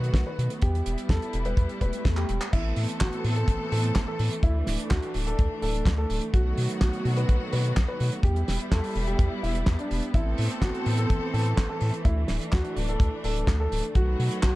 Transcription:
Already playing: analog synth bass B2, string section D#3 F#3 A3 B3 F#4, grand piano B4
0.04 closed hi-hat
0.14 analog synth bass B1, kick, snare, closed hi-hat
0.27 grand piano B4
0.39 analog synth bass B2, closed hi-hat
0.50 closed hi-hat
0.62 analog synth bass E2, string section G3 E4, grand piano G4, kick, closed hi-hat
0.75 closed hi-hat
0.86 analog synth bass E1, closed hi-hat
0.98 closed hi-hat
1.09 analog synth bass E2, grand piano A4, kick, snare, closed hi-hat
1.22 closed hi-hat
1.33 analog synth bass E1, closed hi-hat
1.45 grand piano B4, closed hi-hat
1.57 analog synth bass E2, kick, closed hi-hat, swell
1.69 closed hi-hat
1.81 analog synth bass E1, grand piano B4, kick, closed hi-hat
1.93 closed hi-hat
2.05 analog synth bass E2, kick, snare, closed hi-hat
2.17 grand piano G4, clap, closed hi-hat
2.29 analog synth bass E1, closed hi-hat
2.41 clap, closed hi-hat
2.52 analog synth bass A1, string section E3 A3 B3 C4 A4, grand piano E4, kick, closed hi-hat, crash
2.76 analog synth bass A2, open hi-hat
2.89 closed hi-hat
3.00 analog synth bass A1, grand piano F#4, kick, snare, clap, closed hi-hat
3.13 closed hi-hat
3.24 analog synth bass A2, open hi-hat
3.36 grand piano A4, closed hi-hat
3.48 analog synth bass A1, kick, closed hi-hat
3.72 analog synth bass A2, grand piano A4, open hi-hat
3.84 closed hi-hat
3.95 analog synth bass A1, kick, snare, clap, closed hi-hat
4.08 grand piano A4
4.19 analog synth bass A2, open hi-hat
4.32 closed hi-hat
4.43 analog synth bass D2, string section D4, grand piano E4, kick, closed hi-hat
4.67 analog synth bass D1, snare, open hi-hat
4.79 closed hi-hat
4.91 analog synth bass D2, grand piano F#4, kick, snare, clap, closed hi-hat
5.03 closed hi-hat
5.14 analog synth bass D1, open hi-hat
5.27 grand piano A4, closed hi-hat
5.39 analog synth bass D2, kick, closed hi-hat
5.62 analog synth bass D1, grand piano A4, open hi-hat
5.75 closed hi-hat
5.86 analog synth bass D2, kick, snare, clap, closed hi-hat
5.98 grand piano A4
6.10 analog synth bass D1, open hi-hat
6.22 closed hi-hat
6.34 analog synth bass B1, string section D#3 F#3 B3 F#4, grand piano F#4, kick, closed hi-hat
6.58 analog synth bass B2, open hi-hat
6.69 closed hi-hat
6.81 analog synth bass B1, grand piano F#4, kick, snare, clap, closed hi-hat
6.93 closed hi-hat
7.05 analog synth bass B2, open hi-hat
7.17 grand piano B4, closed hi-hat
7.29 analog synth bass B1, kick, closed hi-hat
7.53 analog synth bass B2, grand piano B4, open hi-hat
7.65 closed hi-hat
7.76 analog synth bass B1, kick, snare, clap, closed hi-hat
7.88 grand piano B4
8.00 analog synth bass B2, open hi-hat
8.12 closed hi-hat
8.23 analog synth bass E2, string section G3 B3 E4, grand piano G4, kick, closed hi-hat
8.36 closed hi-hat
8.48 analog synth bass E1, snare, open hi-hat
8.60 closed hi-hat
8.72 analog synth bass E2, grand piano A4, kick, snare, clap, closed hi-hat
8.84 open hi-hat
8.95 analog synth bass E1, open hi-hat
9.07 grand piano G4, closed hi-hat
9.19 analog synth bass E2, kick, closed hi-hat
9.43 analog synth bass E1, grand piano E4, open hi-hat
9.55 closed hi-hat
9.66 analog synth bass E2, kick, snare, clap, closed hi-hat
9.79 grand piano D4, closed hi-hat
9.91 analog synth bass E1, open hi-hat
10.03 closed hi-hat
10.14 analog synth bass A1, string section E3 A3 C4 A4, grand piano E4, kick, closed hi-hat
10.38 analog synth bass A2, open hi-hat
10.51 closed hi-hat
10.62 analog synth bass A1, grand piano F#4, kick, snare, clap, closed hi-hat
10.74 closed hi-hat
10.86 analog synth bass A2, open hi-hat
10.97 grand piano A4, closed hi-hat
11.10 analog synth bass A1, kick, closed hi-hat
11.34 analog synth bass A2, grand piano A4, open hi-hat
11.45 closed hi-hat
11.57 analog synth bass A1, kick, snare, clap, closed hi-hat
11.70 grand piano A4
11.81 analog synth bass A2, open hi-hat
11.94 closed hi-hat
12.05 analog synth bass D2, string section D4, grand piano E4, kick, closed hi-hat
12.28 analog synth bass D1, snare, open hi-hat
12.41 closed hi-hat
12.52 analog synth bass D2, grand piano F#4, kick, snare, clap, closed hi-hat
12.65 closed hi-hat
12.77 analog synth bass D1, open hi-hat
12.88 grand piano A4, closed hi-hat
13.00 analog synth bass D2, kick, closed hi-hat
13.24 analog synth bass D1, grand piano A4, open hi-hat
13.36 closed hi-hat
13.47 analog synth bass D2, kick, snare, clap, closed hi-hat
13.60 grand piano A4
13.72 analog synth bass D1, open hi-hat
13.83 closed hi-hat
13.95 analog synth bass B1, string section D#3 F#3 B3 F#4, grand piano F#4, kick, closed hi-hat
14.19 analog synth bass B2, open hi-hat
14.31 closed hi-hat
14.43 analog synth bass B1, grand piano F#4, kick, snare, clap, closed hi-hat

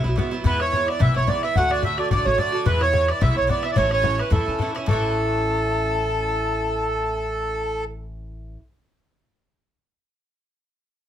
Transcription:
0.04 upright bass B1, bouzouki F#3 B3 E4
0.16 bouzouki G#2 F#3 B3 E4, bodhran
0.31 bouzouki F#3 B3 E4
0.44 upright bass E2, bouzouki G#2 E3 B3 E4, accordion B4, tin whistle B5, bodhran
0.53 bodhran
0.59 bouzouki E3 B3 E4, accordion C#5, tin whistle C#6, bodhran
0.73 bouzouki G#2 E3 B3 E4, bodhran
0.86 bouzouki E4, tin whistle D6, bodhran
0.90 bouzouki E3 B3, accordion D5
0.99 upright bass B1, bouzouki G#2 E3 B3 E4, accordion E5, tin whistle E6, bodhran
1.14 upright bass B1, bouzouki E3 B3 E4, accordion C#5, tin whistle C#6
1.27 bouzouki G#2 E3 B3 E4, accordion D5, tin whistle D6, bodhran
1.43 bouzouki E3 B3 E4, accordion E5, tin whistle E6, bodhran
1.55 upright bass D2, bouzouki A2 D3 A3 F#4, accordion F#5, tin whistle F#6, bodhran
1.63 bodhran
1.70 bouzouki D3 A3 F#4, accordion D5, bodhran
1.82 bouzouki A2 D3 A3 F#4, accordion E5, tin whistle E6, bodhran
1.97 bouzouki D3 A3 F#4, accordion D5, tin whistle D6, bodhran
2.10 upright bass A1, bouzouki A2 D3 A3 F#4, accordion D5, tin whistle D6, bodhran
2.25 upright bass A1, bouzouki D3 A3 F#4, accordion C#5, tin whistle C#6
2.37 bouzouki A2 D3 A3 F#4, accordion D5, tin whistle E6, bodhran
2.41 tin whistle D6
2.52 bouzouki D3 A3 F#4
2.66 upright bass E2, bouzouki G#2 E3 B3 E4, accordion B4, tin whistle B5, bodhran
2.73 bodhran
2.80 bouzouki E3 B3 E4, accordion C#5, tin whistle C#6, bodhran
2.93 bouzouki G#2 E3 B3 E4, tin whistle C#6, bodhran
3.07 bouzouki E3 B3 E4, accordion D5, tin whistle D6, bodhran
3.21 upright bass B1, bouzouki G#2 E3 B3 E4, accordion E5, tin whistle E6, bodhran
3.35 upright bass B1, bouzouki E3 B3 E4, accordion C#5, tin whistle C#6
3.47 bouzouki G#2 E3 B3 E4, accordion D5, tin whistle D6, bodhran
3.63 bouzouki E3 B3 E4, accordion E5, tin whistle E6, bodhran
3.71 accordion D5, tin whistle D6
3.76 upright bass A1, bouzouki A2 E3 C#4 E4, accordion C#5, tin whistle C#6, bodhran
3.84 bodhran
3.89 bouzouki E3 C#4 E4, accordion C#5, tin whistle C#6, bodhran
4.02 bouzouki A2 E3 C#4 E4, bodhran
4.18 bouzouki E3 C#4 E4, accordion B4, tin whistle B5, bodhran
4.30 upright bass E2, bouzouki A2 E3 C#4 E4, accordion A4, tin whistle B5, bodhran
4.35 tin whistle A5
4.46 upright bass E2, bouzouki E3 C#4 E4
4.59 bouzouki A2 E3 C#4 E4, bodhran
4.75 bouzouki E3 C#4 E4, bodhran
4.86 upright bass A1, bouzouki A2 E3, accordion A4, tin whistle A5, bodhran
4.91 bouzouki C#4 E4

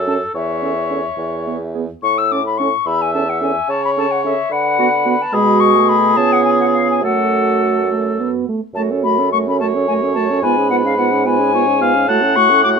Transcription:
Already playing: bassoon F#2, oboe A4
0.07 french horn C#4, clarinet A4, flute A5
0.34 bassoon E2, oboe C#5, flute E5
0.62 french horn C#4, clarinet A4
0.90 french horn C#4, clarinet A4
1.18 bassoon E2
1.47 french horn B3, clarinet G#4
1.74 french horn B3, clarinet G#4
2.02 bassoon A2, flute C#6
2.18 flute E6
2.31 french horn C#4, clarinet A4, flute D6
2.46 flute B5
2.58 french horn C#4, clarinet A4, flute C#6
2.86 bassoon E2, oboe E5, flute B5
3.01 flute G#5
3.14 french horn C#4, clarinet A4, flute A5
3.29 flute F#5
3.41 french horn C#4, clarinet A4, flute G#5
3.69 bassoon C#3, oboe C#5, flute A5
3.85 flute B5
3.97 french horn C#4, clarinet A4, flute A5
4.11 flute F#5
4.24 french horn C#4, clarinet A4, flute E5
4.51 bassoon D3, oboe B4, flute F#5
4.79 french horn B3, clarinet F#4
5.05 french horn B3, clarinet F#4
5.22 flute A5
5.33 bassoon B2, french horn G#3, clarinet F#4, oboe G#4, flute B5
5.60 flute C#6
5.75 french horn A3
5.89 flute B5
6.17 bassoon C#3, french horn B3, clarinet F4, flute A5
6.32 flute F#5
6.45 flute G#5
6.60 flute F#5
6.73 flute F5
6.90 flute G#5
7.03 bassoon F#2, french horn A3, clarinet F#4, oboe A4, flute F#5
7.90 french horn A3
8.20 french horn B3
8.48 french horn A3
8.74 bassoon F#2, french horn A3, clarinet F#4, flute A5
8.91 french horn C#4, clarinet A4
9.04 french horn A3, clarinet F#4, flute B5
9.19 french horn C#4, clarinet A4
9.32 french horn A3, clarinet F#4, flute C#6
9.47 french horn C#4, clarinet A4, flute B5
9.60 french horn A3, clarinet F#4, oboe C#5, flute A5
9.75 french horn C#4, clarinet A4
9.87 french horn A3, clarinet F#4, flute G#5
10.02 french horn C#4, clarinet A4
10.14 french horn A3, clarinet F#4, flute A5
10.30 french horn C#4, clarinet A4
10.42 bassoon G#2, french horn B3, clarinet F4, oboe B4, flute G#5
10.57 french horn C#4, clarinet G#4
10.70 french horn B3, clarinet F4, flute F#5
10.84 french horn C#4, clarinet G#4, flute F5
10.97 french horn B3, clarinet F4, flute F#5
11.11 french horn C#4, clarinet G#4
11.25 french horn B3, clarinet F4, oboe B4, flute G#5
11.39 french horn C#4, clarinet G#4
11.54 french horn B3, clarinet F4, oboe C#5
11.67 french horn C#4, clarinet G#4
11.81 french horn B3, clarinet F4, oboe F5
11.95 french horn C#4, clarinet G#4
12.08 bassoon A2, french horn A3, clarinet F#4, oboe F#5, flute A5
12.22 french horn C#4, clarinet A4
12.36 french horn A3, clarinet F#4, flute C#6
12.50 french horn C#4, clarinet A4
12.63 french horn A3, clarinet F#4, flute D6

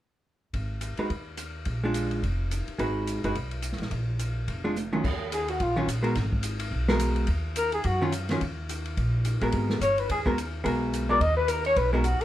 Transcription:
0.53 upright bass G#1, kick, ride
0.81 hi-hat pedal, ride
0.97 hollow-body jazz guitar G#3 D#4 F#4 B4, muted upright bass stroke, ride
1.10 upright bass D#2, kick, ride
1.37 hi-hat pedal, ride
1.65 upright bass A#1, kick, ride
1.84 hollow-body jazz guitar G#3 D4 F4
1.94 hi-hat pedal, ride
2.11 ride
2.23 upright bass F1, kick, ride
2.51 hi-hat pedal, ride
2.67 muted upright bass stroke, ride
2.78 upright bass G#1, hollow-body jazz guitar G#3 D#4 F#4 B4, kick, ride
3.07 hi-hat pedal, ride
3.23 upright bass F#1, hollow-body jazz guitar G#3 D#4 F#4 B4, ride
3.35 upright bass B1, kick, ride
3.51 ride
3.62 hi-hat pedal, ride
3.72 snare
3.78 upright bass A1, snare, ride
3.91 upright bass A#1, kick, ride
4.19 hi-hat pedal, ride
4.48 upright bass F1, kick, ride
4.64 hollow-body jazz guitar G#3 D4 F4
4.76 hi-hat pedal, high tom
4.93 hollow-body jazz guitar D#3 F#3 C#4 F4, high tom
5.03 upright bass D#2, kick, crash
5.32 alto saxophone G#4, trumpet G#4, hi-hat pedal, ride
5.48 alto saxophone F#4, trumpet F#4, ride
5.60 upright bass A#1, alto saxophone F4, trumpet F4, kick, ride
5.76 hollow-body jazz guitar D#3 F#3 C#4 F4
5.87 upright bass A#1, hi-hat pedal, ride
6.03 hollow-body jazz guitar G#3 B3 F#4 A#4, ride
6.15 upright bass G#1, kick, snare, ride
6.32 kick
6.43 hi-hat pedal, ride
6.60 ride
6.71 upright bass B1, kick
6.88 hollow-body jazz guitar G#3 B3 F#4 A#4, snare
7.00 hi-hat pedal, ride
7.16 ride
7.27 upright bass D#2, kick, ride
7.56 trumpet A#4, alto saxophone A#4, hi-hat pedal, ride
7.72 trumpet G#4, alto saxophone G#4, ride
7.84 upright bass F#2, trumpet F#4, alto saxophone F#4, kick, ride
8.01 hollow-body jazz guitar D#3 F#3 C#4 F4
8.12 hi-hat pedal, ride
8.29 hollow-body jazz guitar D#3 F#3 C#4 F4, snare, ride
8.41 upright bass D#2, kick, ride
8.69 hi-hat pedal, ride
8.86 ride
8.97 upright bass A#1, kick, ride
9.25 hi-hat pedal, ride
9.41 upright bass A1, hollow-body jazz guitar G#3 B3 F#4 A#4, ride
9.52 upright bass G#1, kick, ride
9.70 snare
9.80 upright bass G1, trumpet C#5, alto saxophone C#5, hi-hat pedal, ride
9.98 trumpet B4, alto saxophone B4, ride
10.09 upright bass D#2, alto saxophone G#4, trumpet G#4, kick, ride
10.26 hollow-body jazz guitar G#3 B3 F#4 A#4, kick
10.38 hi-hat pedal, ride
10.64 upright bass B1, hollow-body jazz guitar G#3 B3 F#4 A#4, kick, ride
10.94 hi-hat pedal, ride
11.09 hollow-body jazz guitar G#3 B3 F#4 A#4, alto saxophone D5, trumpet D5
11.20 upright bass D#2, alto saxophone D#5, trumpet D#5, kick, ride
11.36 alto saxophone B4, trumpet B4
11.47 alto saxophone A#4, trumpet A#4, hi-hat pedal, ride
11.65 alto saxophone C#5, trumpet C#5, ride
11.76 upright bass B1, trumpet B4, alto saxophone B4, kick, ride
11.93 hollow-body jazz guitar G#3 B3 F#4 A#4, trumpet D#4, alto saxophone D#4
12.04 trumpet F#4, alto saxophone F#4, hi-hat pedal, ride
12.21 trumpet A#4, alto saxophone A#4, ride

